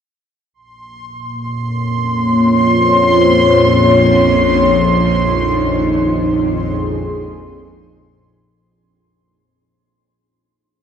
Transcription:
0.53 A#1 F2 A#3 C6
1.20 C#5
1.58 F4
2.37 C5
4.82 D#4
6.38 G#4

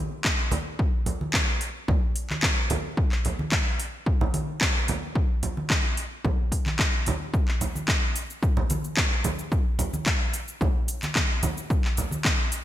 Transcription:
0.25 kick, clap
0.51 open hi-hat, high conga, low conga
0.79 kick
1.06 open hi-hat, low conga
1.21 high conga
1.34 kick, clap
1.61 open hi-hat
1.88 kick, low conga
2.16 open hi-hat
2.30 clap, high conga
2.43 kick, clap
2.70 open hi-hat, high conga, low conga
2.97 kick
3.12 clap
3.25 open hi-hat, low conga
3.39 high conga
3.52 kick, clap
3.79 open hi-hat
4.06 kick
4.21 low conga
4.34 open hi-hat, high conga
4.61 kick, clap
4.88 open hi-hat, high conga, low conga
5.15 kick
5.43 open hi-hat, low conga
5.57 high conga
5.70 kick, clap
5.97 open hi-hat
6.25 kick, low conga
6.52 kick, open hi-hat
6.66 clap, high conga
6.79 kick, clap
7.06 open hi-hat, high conga, low conga
7.34 kick, shaker
7.48 clap
7.61 open hi-hat, low conga, shaker
7.75 high conga, shaker
7.88 kick, clap, shaker
8.16 open hi-hat, shaker
8.30 shaker
8.43 kick, shaker
8.57 low conga
8.70 open hi-hat, high conga, shaker
8.84 shaker
8.97 kick, clap, shaker
9.24 open hi-hat, high conga, low conga, shaker
9.39 shaker
9.52 kick, shaker
9.79 open hi-hat, low conga, shaker
9.93 high conga, shaker
10.06 kick, clap, shaker
10.34 open hi-hat, shaker
10.48 shaker
10.61 kick, low conga, shaker
10.88 open hi-hat, shaker
11.02 clap, high conga, shaker
11.15 kick, clap, shaker
11.43 open hi-hat, high conga, low conga, shaker
11.58 shaker
11.70 kick, shaker
11.85 clap
11.97 open hi-hat, low conga, shaker
12.11 high conga, shaker
12.25 kick, clap, shaker
12.52 open hi-hat, shaker

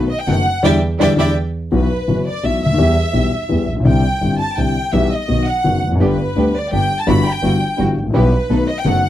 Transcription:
0.11 D#5
0.20 G5
0.27 F#1 F#2 D#3 A3 B3 D#4 F#4 A4 F#5
0.63 E2 D3 E3 G3 D4 E4 G4 D5 E5 G5
0.99 E2 D3 E3 G3 D4 E4 G4 D5 E5 G5
1.16 E2 D3 E3 G3 D4 E4 G4 D5 E5 G5
1.72 B1 B2 E3 F#3 B3 F#4 B4
2.08 F#1 F#2 E3 F#3 B3 F#4
2.27 D5
2.43 B1 B2 E3 F#3 B3 F#4 E5
2.61 D2 E5
2.66 C#2 D2
2.74 D#2 E3
2.78 E2 G3 B3 G4
3.13 B1 B2 E3 G3 B3 G4
3.49 E2 E3 G3 B3 G4
3.68 A1 A#1
3.76 A#1
3.80 B1
3.85 C2 C3 D3 G3 C4 E4 G5
4.21 G1 G2 D3 G3 C4 E4
4.41 A5
4.57 C2 C3 D3 G3 C4 E4 G5
4.93 B1 B2 E3 G3 B3 G4 E5
5.12 D#5
5.28 B1 B2 D#3 F#3 B3 F#4
5.47 F#5
5.64 F#1 F#2 D#3 F#3 B3 F#4
5.83 F1 E2
5.92 F2 F#2
6.00 G1 G2 D3 G3 B3 D4 G4 B4
6.36 D2 D3 G3 B3 D4 G4
6.55 D5
6.72 G1 G2 D3 G3 B3 D4 G4 G5
6.99 A5
7.07 G1 G2 E3 G3 B3 E4 F#4 B5
7.26 G5
7.42 G1 G2 E3 G3 B3 E4 F#4
7.78 G1 G2 E3 G3 B3 E4 F#4
7.98 G#1 A1
8.06 A1
8.10 A#1 B1 B2 E3 G3 B3
8.14 B1 B3 E4 G4 B4
8.50 B1 B2 D#3 A3 B3 D#4 F#4 A4
8.68 D#5
8.78 G5
8.85 F#1 F#2 D#3 A3 B3 D#4 F#4 A4 F#5

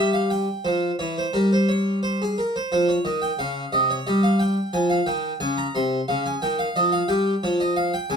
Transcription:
Already playing: G3 E5
0.13 F5
0.30 G5
0.65 F3 C5
0.99 E3 C#5
1.18 C5
1.33 G3 A#4
1.53 C5
1.69 C#5
2.03 C5
2.22 G#4
2.38 A#4
2.56 C5
2.72 F3 C5
2.89 C#5
3.05 D#3 D#5
3.22 G5
3.39 C#3 F5
3.72 C3 D#5
3.90 C#5
4.07 G3 D#5
4.23 F5
4.39 G5
4.73 F3 G#5
4.90 F5
5.06 D#3 G5
5.40 C#3 G#5
5.57 A#5
5.75 C3 C6
6.08 C#3 F5
6.26 G#5
6.42 D#3 G5
6.59 F5
6.76 F3 D#5
6.92 F5
7.08 G3 G5
7.43 F3 C#5
7.60 D#5
7.76 F5
7.94 G5
8.10 C#3 G#5

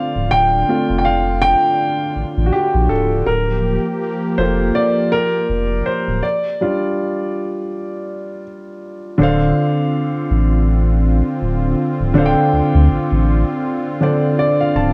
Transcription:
Already playing: D3 A3 C4 F4 D5 F5
0.16 C#1
0.31 D1 D4 G5
0.68 A3 C4 F4
0.90 F1
0.98 G5
1.05 F5
1.42 G5
2.16 A1
2.38 A1
2.46 F#4
2.53 G4
2.75 A#1
2.90 C#1 A4
3.27 D1 F3 A#3 G4 A#4
4.38 F1 A#3 F4 A4 C5
4.75 D5
5.12 A#4
5.50 F1
5.86 C5
6.08 D1
6.23 D5
6.61 G3 D4 F4
9.18 D1 D3 C4 D4 F4 A4 C5
9.23 F5
10.31 A1
11.42 D1
12.01 C#1
12.14 D1 D3 D4 A4 C5
12.19 F5
12.26 G5
12.53 D2
12.75 D2
12.90 A1
13.12 A1
14.01 D3 D4 A4 C5 D5
14.39 D5
14.60 F5
14.76 C#1 A5

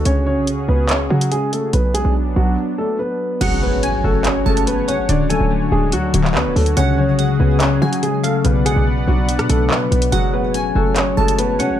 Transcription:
Already playing: F#4
0.05 C#2 C#3 C#4 G#4 C#5, closed hi-hat
0.26 C#4 C#5
0.37 B1
0.47 closed hi-hat
0.53 C#2
0.68 C#2 B3 B4
0.89 C#4 C#5, clap, closed hi-hat
1.10 C#3 F#3 F#4
1.21 closed hi-hat
1.31 G#3 G#4, closed hi-hat
1.52 A3 A4, closed hi-hat
1.73 B1 F#3 B3 D4 B4, closed hi-hat
1.94 G#3 G#4, closed hi-hat
2.05 B1
2.36 B1 F#3 F#4
2.78 A3 A4
2.99 B3 B4
3.41 F#1 F#3 G#3 C#4 F#4 C#5 F#5, closed hi-hat, crash, impact
3.62 A3 B3 B4
3.83 C#4 G#5, closed hi-hat
4.04 F#1 A3 F#4 A4
4.24 C#4 C#5, clap, closed hi-hat
4.46 F#1 G#3 A3 A4 A5
4.57 closed hi-hat
4.67 A3 B3 B4, closed hi-hat
4.88 C#3 C#4 C#5 F#5, closed hi-hat
4.98 F#1
5.09 D1 D3 D4 F#4 D5, closed hi-hat
5.30 F#3 A3 A4 G#5, closed hi-hat
5.40 D1
5.51 A3
5.72 D1 G#3 D4 G#4
5.92 D2 F#3 F#4, closed hi-hat
6.14 D1 D3 F#3 F#4, closed hi-hat
6.24 clap
6.35 D2 F#3 B3 B4, clap
6.45 D1
6.56 D2 A3 A4, open hi-hat
6.66 closed hi-hat
6.77 C#2 C#3 C#4 G#4 C#5 F#5, closed hi-hat
6.98 F#3 C#4 C#5
7.08 B1
7.19 G#3 F#5, closed hi-hat
7.24 C#2
7.40 C#2 B3 C#4 B4
7.60 C#4 F#4 C#5, clap, closed hi-hat
7.82 C#3 F#3 F#4 G#5
7.93 closed hi-hat
8.02 F#3 G#3 G#4, closed hi-hat
8.23 G#3 A3 A4 F5, closed hi-hat
8.45 B1 B2 B3 B4 D5 F#5, closed hi-hat
8.65 F#3 G#3 G#4 F#5, closed hi-hat
8.76 B1
8.87 B3
9.08 B1 F#3 D4 F#4
9.29 F#4, closed hi-hat
9.39 B2, cross-stick, closed hi-hat
9.49 B1 B2 A3 A4, closed hi-hat
9.70 F#3 B3 B4, clap
9.92 B1 B3, closed hi-hat
10.02 closed hi-hat
10.12 F#1 F#3 G#3 F#4 C#5 F#5, closed hi-hat
10.33 A3 B3 B4
10.54 C#4 G#5, closed hi-hat
10.75 F#1 A3 F#4 A4
10.96 C#4 C#5, clap, closed hi-hat
11.17 F#1 G#3 A3 A4 A5
11.28 closed hi-hat
11.38 A3 B3 B4, closed hi-hat
11.59 C#3 C#4 C#5 F#5, closed hi-hat
11.70 F#1

